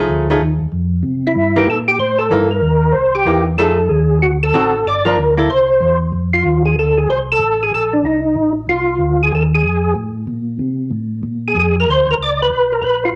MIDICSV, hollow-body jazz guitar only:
0, 0, Header, 1, 2, 480
1, 0, Start_track
1, 0, Tempo, 318471
1, 1567, Time_signature, 4, 2, 24, 8
1, 19827, End_track
2, 0, Start_track
2, 0, Title_t, "Hollow-body jazz guitar"
2, 0, Program_c, 0, 26
2, 0, Note_on_c, 0, 53, 58
2, 0, Note_on_c, 0, 57, 57
2, 0, Note_on_c, 0, 63, 62
2, 0, Note_on_c, 0, 68, 57
2, 400, Note_off_c, 0, 53, 0
2, 402, Note_off_c, 0, 57, 0
2, 408, Note_off_c, 0, 63, 0
2, 410, Note_off_c, 0, 68, 0
2, 452, Note_on_c, 0, 53, 64
2, 462, Note_on_c, 0, 57, 65
2, 462, Note_on_c, 0, 63, 68
2, 472, Note_on_c, 0, 68, 67
2, 602, Note_off_c, 0, 53, 0
2, 606, Note_off_c, 0, 57, 0
2, 606, Note_off_c, 0, 63, 0
2, 611, Note_off_c, 0, 68, 0
2, 2354, Note_on_c, 0, 52, 64
2, 2359, Note_on_c, 0, 58, 65
2, 2366, Note_on_c, 0, 63, 65
2, 2511, Note_off_c, 0, 52, 0
2, 2514, Note_off_c, 0, 58, 0
2, 2517, Note_off_c, 0, 63, 0
2, 3482, Note_on_c, 0, 52, 61
2, 3494, Note_on_c, 0, 58, 65
2, 3507, Note_on_c, 0, 63, 65
2, 3754, Note_off_c, 0, 52, 0
2, 3760, Note_off_c, 0, 58, 0
2, 3766, Note_off_c, 0, 63, 0
2, 4919, Note_on_c, 0, 52, 47
2, 4925, Note_on_c, 0, 58, 52
2, 4935, Note_on_c, 0, 63, 50
2, 5191, Note_off_c, 0, 52, 0
2, 5194, Note_off_c, 0, 58, 0
2, 5199, Note_off_c, 0, 63, 0
2, 5398, Note_on_c, 0, 53, 55
2, 5409, Note_on_c, 0, 57, 60
2, 5414, Note_on_c, 0, 63, 58
2, 5422, Note_on_c, 0, 68, 61
2, 5670, Note_off_c, 0, 53, 0
2, 5676, Note_off_c, 0, 57, 0
2, 5678, Note_off_c, 0, 63, 0
2, 5682, Note_off_c, 0, 68, 0
2, 6841, Note_on_c, 0, 50, 58
2, 6846, Note_on_c, 0, 60, 59
2, 6853, Note_on_c, 0, 63, 62
2, 6860, Note_on_c, 0, 66, 69
2, 7110, Note_off_c, 0, 50, 0
2, 7113, Note_off_c, 0, 60, 0
2, 7117, Note_off_c, 0, 63, 0
2, 7120, Note_off_c, 0, 66, 0
2, 7615, Note_on_c, 0, 53, 69
2, 7627, Note_on_c, 0, 58, 69
2, 7633, Note_on_c, 0, 62, 70
2, 7778, Note_off_c, 0, 53, 0
2, 7783, Note_off_c, 0, 58, 0
2, 7787, Note_off_c, 0, 62, 0
2, 8101, Note_on_c, 0, 58, 57
2, 8108, Note_on_c, 0, 64, 65
2, 8122, Note_on_c, 0, 69, 75
2, 8260, Note_off_c, 0, 58, 0
2, 8264, Note_off_c, 0, 64, 0
2, 8271, Note_off_c, 0, 69, 0
2, 19827, End_track
0, 0, End_of_file